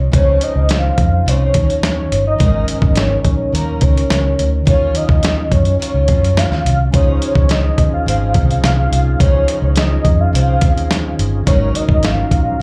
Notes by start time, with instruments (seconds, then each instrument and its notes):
Already playing: steel-string acoustic guitar F3 D#4
0.12 fingered electric bass C#2, steel-string acoustic guitar C#3 F3 C4, soft synth lead C#5, kick, closed hi-hat
0.17 steel-string acoustic guitar D#4
0.41 soft synth lead D#5, closed hi-hat
0.56 fingered electric bass C#2
0.69 soft synth lead F5, snare, closed hi-hat
0.98 fingered electric bass F2, kick, closed hi-hat
1.26 fingered electric bass C2, steel-string acoustic guitar C#3 F3 C4 D#4, soft synth lead C#5, closed hi-hat
1.54 fingered electric bass D#2, steel-string acoustic guitar F3 D#4, kick, closed hi-hat
1.70 closed hi-hat
1.83 soft synth lead C#5, snare, closed hi-hat
2.12 fingered electric bass G1, closed hi-hat
2.27 soft synth lead D#5
2.39 fingered electric bass G#1, steel-string acoustic guitar G#2 C#3 F#3 C#4 D#4, kick, closed hi-hat
2.43 steel-string acoustic guitar A#4
2.68 soft synth lead D#5, closed hi-hat
2.82 fingered electric bass G#1, kick
2.96 soft synth lead C#5, snare, closed hi-hat
3.25 fingered electric bass A#1, kick, closed hi-hat
3.52 fingered electric bass D#2, steel-string acoustic guitar F#3 C#4 D#4 A#4, soft synth lead A#4, closed hi-hat
3.81 fingered electric bass C#2, steel-string acoustic guitar F#3 C#4 D#4 A#4, soft synth lead C#5, kick, closed hi-hat
3.98 closed hi-hat
4.10 fingered electric bass C#2, soft synth lead C#5, snare, closed hi-hat
4.39 fingered electric bass D2, closed hi-hat
4.65 fingered electric bass D#2, steel-string acoustic guitar D#3 F#3 C#4, soft synth lead C#5, kick, closed hi-hat
4.70 steel-string acoustic guitar F4
4.95 soft synth lead D#5, closed hi-hat
5.09 fingered electric bass D#2, kick
5.23 snare, closed hi-hat
5.52 fingered electric bass F#2, soft synth lead C#5, kick, closed hi-hat
5.65 closed hi-hat
5.79 steel-string acoustic guitar D#3 F#3 C#4 F4, closed hi-hat
5.94 fingered electric bass C#2
6.08 fingered electric bass F2, steel-string acoustic guitar F#3 C#4 F4, kick, closed hi-hat
6.22 fingered electric bass F#2, closed hi-hat
6.37 soft synth lead F5, snare, closed hi-hat
6.51 fingered electric bass D#2, snare
6.65 fingered electric bass C2, soft synth lead F5, closed hi-hat
6.92 fingered electric bass C#2, steel-string acoustic guitar C#3 F3, tonewheel organ C#4 D#4 F4, soft synth lead C#5, kick, closed hi-hat
6.97 steel-string acoustic guitar D#4, tonewheel organ G#4
7.22 closed hi-hat
7.35 fingered electric bass C#2, soft synth lead C#5, kick
7.49 soft synth lead D#5, snare, closed hi-hat
7.78 fingered electric bass D#2, kick, closed hi-hat
7.93 soft synth lead F5
8.06 fingered electric bass G#1, steel-string acoustic guitar C#3 F3 C4 D#4, soft synth lead F5, closed hi-hat
8.34 fingered electric bass C2, steel-string acoustic guitar F3 C4 D#4, kick, closed hi-hat
8.51 closed hi-hat
8.63 fingered electric bass C2, soft synth lead F5, snare, closed hi-hat
8.92 fingered electric bass C2, soft synth lead F5, closed hi-hat
9.19 fingered electric bass C#2, steel-string acoustic guitar C#3 F3, soft synth lead C#5, kick, closed hi-hat
9.24 steel-string acoustic guitar D#4
9.48 closed hi-hat
9.62 fingered electric bass C#2, soft synth lead C#5
9.76 soft synth lead D#5, snare, closed hi-hat
10.05 fingered electric bass F2, kick, closed hi-hat
10.20 soft synth lead F5
10.33 fingered electric bass C2, steel-string acoustic guitar C#3 F3 C4 D#4, soft synth lead F5, closed hi-hat
10.61 fingered electric bass D#2, steel-string acoustic guitar F3 C4 D#4, kick, closed hi-hat
10.78 closed hi-hat
10.91 snare, closed hi-hat
11.19 fingered electric bass G1, closed hi-hat
11.44 fingered electric bass G#1, steel-string acoustic guitar G#2 C#3, tonewheel organ C#4 D#4 F#4, soft synth lead C#5, kick, closed hi-hat
11.48 steel-string acoustic guitar F#3 C#4 D#4 A#4, tonewheel organ A#4
11.75 soft synth lead D#5, closed hi-hat
11.88 fingered electric bass G#1, kick
12.03 soft synth lead F5, snare, closed hi-hat
12.31 fingered electric bass A#1, kick, closed hi-hat